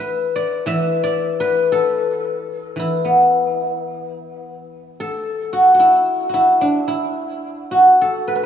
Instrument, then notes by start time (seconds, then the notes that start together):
guzheng
Already playing: E3 E5
0.00 B4
0.36 D5
0.66 E3 E5
1.04 D5
1.40 B4
1.72 A4
2.76 E3 E4
3.05 B3
5.00 A4
5.53 F#4
5.74 F#4
5.79 E4
6.29 F#4
6.34 E4
6.61 D4
6.88 E4
7.71 F#4
8.01 A4
8.28 B4
8.35 B4